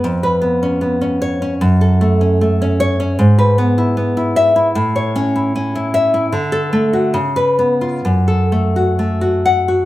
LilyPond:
\new Staff \with { instrumentName = "Nylon-string guitar" } { \time 2/4 \key fis \minor \tempo 4 = 76 << { r4. cis''8 | r4. cis''8 | r4. e''8 | r4. e''8 |
r16 a'8 r8 b'8 r16 | r4. fis''8 | } \\ { eis,16 b'16 b16 cis'16 b16 cis'8 cis'16 | fis,16 a'16 a16 cis'16 a16 cis'8 cis'16 | gis,16 b'16 b16 e'16 b16 e'8 e'16 | a,16 cis''16 cis'16 e'16 cis'16 e'8 e'16 |
d8 a16 fis'16 cis8 b16 eis'16 | fis,16 a'16 a16 fis'16 a16 fis'8 fis'16 | } >> }